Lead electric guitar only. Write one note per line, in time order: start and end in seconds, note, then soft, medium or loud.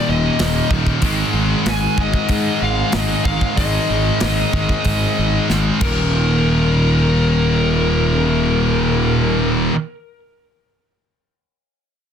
0.09 0.68 D#5 medium
1.69 1.98 G#5 loud
2.01 2.63 D#5 medium
2.63 2.95 F5 medium
2.95 3.24 D#5 medium
3.25 3.57 F5 medium
3.57 5.45 D#5 medium
5.83 9.46 A#4 medium